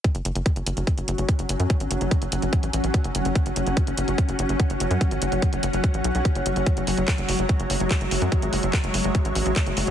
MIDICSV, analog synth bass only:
0, 0, Header, 1, 2, 480
1, 0, Start_track
1, 0, Tempo, 413793
1, 51, Time_signature, 4, 2, 24, 8
1, 11492, End_track
2, 0, Start_track
2, 0, Title_t, "Analog synth bass"
2, 0, Program_c, 0, 38
2, 171, Note_on_c, 0, 30, 88
2, 254, Note_off_c, 0, 30, 0
2, 291, Note_on_c, 0, 30, 98
2, 374, Note_off_c, 0, 30, 0
2, 411, Note_on_c, 0, 30, 88
2, 494, Note_off_c, 0, 30, 0
2, 651, Note_on_c, 0, 30, 88
2, 734, Note_off_c, 0, 30, 0
2, 771, Note_on_c, 0, 30, 100
2, 854, Note_off_c, 0, 30, 0
2, 891, Note_on_c, 0, 30, 90
2, 974, Note_off_c, 0, 30, 0
2, 1131, Note_on_c, 0, 30, 83
2, 1214, Note_off_c, 0, 30, 0
2, 1251, Note_on_c, 0, 30, 107
2, 1334, Note_off_c, 0, 30, 0
2, 1371, Note_on_c, 0, 30, 92
2, 1454, Note_off_c, 0, 30, 0
2, 1611, Note_on_c, 0, 30, 88
2, 1694, Note_off_c, 0, 30, 0
2, 1731, Note_on_c, 0, 30, 96
2, 1814, Note_off_c, 0, 30, 0
2, 1851, Note_on_c, 0, 42, 93
2, 1934, Note_off_c, 0, 42, 0
2, 2091, Note_on_c, 0, 32, 82
2, 2174, Note_off_c, 0, 32, 0
2, 2211, Note_on_c, 0, 30, 96
2, 2294, Note_off_c, 0, 30, 0
2, 2331, Note_on_c, 0, 30, 86
2, 2414, Note_off_c, 0, 30, 0
2, 2571, Note_on_c, 0, 30, 88
2, 2654, Note_off_c, 0, 30, 0
2, 2691, Note_on_c, 0, 30, 99
2, 2774, Note_off_c, 0, 30, 0
2, 2811, Note_on_c, 0, 30, 87
2, 2894, Note_off_c, 0, 30, 0
2, 3051, Note_on_c, 0, 33, 85
2, 3134, Note_off_c, 0, 33, 0
2, 3171, Note_on_c, 0, 33, 107
2, 3254, Note_off_c, 0, 33, 0
2, 3291, Note_on_c, 0, 33, 87
2, 3374, Note_off_c, 0, 33, 0
2, 3531, Note_on_c, 0, 30, 87
2, 3614, Note_off_c, 0, 30, 0
2, 3651, Note_on_c, 0, 30, 94
2, 3734, Note_off_c, 0, 30, 0
2, 3771, Note_on_c, 0, 30, 93
2, 3854, Note_off_c, 0, 30, 0
2, 4012, Note_on_c, 0, 30, 88
2, 4094, Note_off_c, 0, 30, 0
2, 4132, Note_on_c, 0, 30, 93
2, 4214, Note_off_c, 0, 30, 0
2, 4251, Note_on_c, 0, 30, 91
2, 4334, Note_off_c, 0, 30, 0
2, 4491, Note_on_c, 0, 30, 85
2, 4574, Note_off_c, 0, 30, 0
2, 4611, Note_on_c, 0, 30, 98
2, 4694, Note_off_c, 0, 30, 0
2, 4731, Note_on_c, 0, 30, 86
2, 4814, Note_off_c, 0, 30, 0
2, 4971, Note_on_c, 0, 30, 88
2, 5054, Note_off_c, 0, 30, 0
2, 5091, Note_on_c, 0, 30, 104
2, 5174, Note_off_c, 0, 30, 0
2, 5211, Note_on_c, 0, 30, 91
2, 5294, Note_off_c, 0, 30, 0
2, 5452, Note_on_c, 0, 30, 91
2, 5534, Note_off_c, 0, 30, 0
2, 5572, Note_on_c, 0, 30, 98
2, 5654, Note_off_c, 0, 30, 0
2, 5691, Note_on_c, 0, 42, 98
2, 5774, Note_off_c, 0, 42, 0
2, 5931, Note_on_c, 0, 32, 84
2, 6014, Note_off_c, 0, 32, 0
2, 6051, Note_on_c, 0, 30, 94
2, 6134, Note_off_c, 0, 30, 0
2, 6171, Note_on_c, 0, 30, 86
2, 6254, Note_off_c, 0, 30, 0
2, 6411, Note_on_c, 0, 30, 85
2, 6494, Note_off_c, 0, 30, 0
2, 6531, Note_on_c, 0, 30, 104
2, 6614, Note_off_c, 0, 30, 0
2, 6651, Note_on_c, 0, 30, 89
2, 6734, Note_off_c, 0, 30, 0
2, 6892, Note_on_c, 0, 33, 85
2, 6974, Note_off_c, 0, 33, 0
2, 7011, Note_on_c, 0, 35, 102
2, 7094, Note_off_c, 0, 35, 0
2, 7131, Note_on_c, 0, 35, 97
2, 7214, Note_off_c, 0, 35, 0
2, 7371, Note_on_c, 0, 30, 91
2, 7454, Note_off_c, 0, 30, 0
2, 7491, Note_on_c, 0, 30, 94
2, 7574, Note_off_c, 0, 30, 0
2, 7611, Note_on_c, 0, 30, 91
2, 7694, Note_off_c, 0, 30, 0
2, 7851, Note_on_c, 0, 30, 84
2, 7934, Note_off_c, 0, 30, 0
2, 7971, Note_on_c, 0, 30, 95
2, 8054, Note_off_c, 0, 30, 0
2, 8091, Note_on_c, 0, 30, 90
2, 8174, Note_off_c, 0, 30, 0
2, 8331, Note_on_c, 0, 30, 87
2, 8414, Note_off_c, 0, 30, 0
2, 8451, Note_on_c, 0, 30, 96
2, 8534, Note_off_c, 0, 30, 0
2, 8571, Note_on_c, 0, 30, 85
2, 8654, Note_off_c, 0, 30, 0
2, 8811, Note_on_c, 0, 30, 86
2, 8894, Note_off_c, 0, 30, 0
2, 8931, Note_on_c, 0, 30, 108
2, 9014, Note_off_c, 0, 30, 0
2, 9051, Note_on_c, 0, 30, 96
2, 9134, Note_off_c, 0, 30, 0
2, 9291, Note_on_c, 0, 30, 90
2, 9374, Note_off_c, 0, 30, 0
2, 9411, Note_on_c, 0, 30, 95
2, 9494, Note_off_c, 0, 30, 0
2, 9531, Note_on_c, 0, 42, 94
2, 9614, Note_off_c, 0, 42, 0
2, 9771, Note_on_c, 0, 32, 86
2, 9854, Note_off_c, 0, 32, 0
2, 9891, Note_on_c, 0, 30, 94
2, 9974, Note_off_c, 0, 30, 0
2, 10011, Note_on_c, 0, 30, 91
2, 10094, Note_off_c, 0, 30, 0
2, 10251, Note_on_c, 0, 30, 91
2, 10334, Note_off_c, 0, 30, 0
2, 10371, Note_on_c, 0, 30, 100
2, 10454, Note_off_c, 0, 30, 0
2, 10491, Note_on_c, 0, 30, 90
2, 10574, Note_off_c, 0, 30, 0
2, 10731, Note_on_c, 0, 33, 86
2, 10814, Note_off_c, 0, 33, 0
2, 10851, Note_on_c, 0, 33, 105
2, 10934, Note_off_c, 0, 33, 0
2, 10971, Note_on_c, 0, 33, 89
2, 11054, Note_off_c, 0, 33, 0
2, 11211, Note_on_c, 0, 30, 91
2, 11294, Note_off_c, 0, 30, 0
2, 11331, Note_on_c, 0, 30, 99
2, 11414, Note_off_c, 0, 30, 0
2, 11451, Note_on_c, 0, 30, 93
2, 11492, Note_off_c, 0, 30, 0
2, 11492, End_track
0, 0, End_of_file